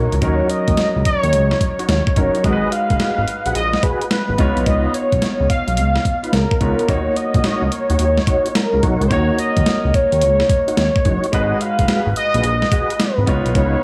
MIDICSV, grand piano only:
0, 0, Header, 1, 2, 480
1, 0, Start_track
1, 0, Key_signature, -6, "minor"
1, 0, Tempo, 555556
1, 188, Time_signature, 4, 2, 24, 8
1, 11955, End_track
2, 0, Start_track
2, 0, Title_t, "Grand piano"
2, 0, Program_c, 0, 0
2, 0, Control_c, 0, 64, 127
2, 0, Note_on_c, 0, 54, 61
2, 0, Note_on_c, 0, 61, 60
2, 0, Note_on_c, 0, 63, 54
2, 0, Note_on_c, 0, 70, 69
2, 152, Note_off_c, 0, 54, 0
2, 155, Note_off_c, 0, 61, 0
2, 159, Note_off_c, 0, 63, 0
2, 162, Note_off_c, 0, 70, 0
2, 183, Note_on_c, 0, 54, 64
2, 191, Note_on_c, 0, 61, 57
2, 198, Note_on_c, 0, 63, 54
2, 205, Note_on_c, 0, 70, 69
2, 1832, Note_off_c, 0, 54, 0
2, 1836, Note_off_c, 0, 61, 0
2, 1840, Note_off_c, 0, 63, 0
2, 1843, Note_off_c, 0, 70, 0
2, 1870, Note_on_c, 0, 54, 54
2, 1873, Note_on_c, 0, 61, 46
2, 1876, Note_on_c, 0, 63, 47
2, 1880, Note_on_c, 0, 70, 56
2, 2097, Note_off_c, 0, 63, 0
2, 2103, Note_on_c, 0, 56, 62
2, 2109, Note_off_c, 0, 54, 0
2, 2110, Note_on_c, 0, 63, 57
2, 2111, Note_off_c, 0, 61, 0
2, 2111, Note_off_c, 0, 70, 0
2, 2118, Note_on_c, 0, 66, 59
2, 2121, Control_c, 0, 64, 0
2, 2124, Note_on_c, 0, 70, 55
2, 2182, Note_on_c, 0, 71, 65
2, 2190, Note_off_c, 0, 70, 0
2, 2278, Control_c, 0, 64, 127
2, 3752, Note_off_c, 0, 56, 0
2, 3756, Note_off_c, 0, 63, 0
2, 3760, Note_off_c, 0, 66, 0
2, 3783, Note_on_c, 0, 59, 72
2, 3790, Note_on_c, 0, 63, 61
2, 3792, Note_off_c, 0, 71, 0
2, 3798, Note_on_c, 0, 65, 62
2, 3799, Control_c, 0, 64, 0
2, 3804, Note_on_c, 0, 73, 78
2, 3974, Control_c, 0, 64, 127
2, 5671, Note_off_c, 0, 59, 0
2, 5675, Note_off_c, 0, 63, 0
2, 5679, Note_off_c, 0, 65, 0
2, 5682, Note_off_c, 0, 73, 0
2, 5707, Note_on_c, 0, 59, 47
2, 5711, Note_on_c, 0, 63, 47
2, 5714, Note_on_c, 0, 65, 47
2, 5718, Note_on_c, 0, 73, 56
2, 5936, Note_off_c, 0, 63, 0
2, 5943, Note_on_c, 0, 58, 62
2, 5948, Note_off_c, 0, 59, 0
2, 5949, Note_off_c, 0, 73, 0
2, 5949, Note_on_c, 0, 63, 57
2, 5952, Note_off_c, 0, 65, 0
2, 5955, Note_on_c, 0, 66, 58
2, 5958, Control_c, 0, 64, 0
2, 5962, Note_on_c, 0, 73, 67
2, 6116, Control_c, 0, 64, 127
2, 7831, Note_off_c, 0, 58, 0
2, 7834, Note_off_c, 0, 63, 0
2, 7838, Note_off_c, 0, 66, 0
2, 7841, Note_off_c, 0, 73, 0
2, 7862, Note_on_c, 0, 58, 65
2, 7868, Note_on_c, 0, 63, 57
2, 7875, Note_on_c, 0, 66, 56
2, 7883, Note_on_c, 0, 73, 72
2, 9751, Note_off_c, 0, 58, 0
2, 9754, Note_off_c, 0, 63, 0
2, 9757, Note_off_c, 0, 66, 0
2, 9761, Note_off_c, 0, 73, 0
2, 9782, Note_on_c, 0, 56, 66
2, 9788, Note_on_c, 0, 63, 59
2, 9795, Note_on_c, 0, 66, 60
2, 9799, Control_c, 0, 64, 0
2, 9802, Note_on_c, 0, 71, 68
2, 9969, Control_c, 0, 64, 127
2, 11432, Note_off_c, 0, 56, 0
2, 11435, Note_off_c, 0, 63, 0
2, 11438, Note_off_c, 0, 66, 0
2, 11442, Note_off_c, 0, 71, 0
2, 11460, Note_on_c, 0, 59, 70
2, 11466, Note_on_c, 0, 63, 63
2, 11474, Note_on_c, 0, 65, 64
2, 11480, Note_on_c, 0, 73, 75
2, 11481, Control_c, 0, 64, 0
2, 11635, Control_c, 0, 64, 127
2, 11955, Note_off_c, 0, 59, 0
2, 11955, Note_off_c, 0, 63, 0
2, 11955, Note_off_c, 0, 65, 0
2, 11955, Note_off_c, 0, 73, 0
2, 11955, End_track
0, 0, End_of_file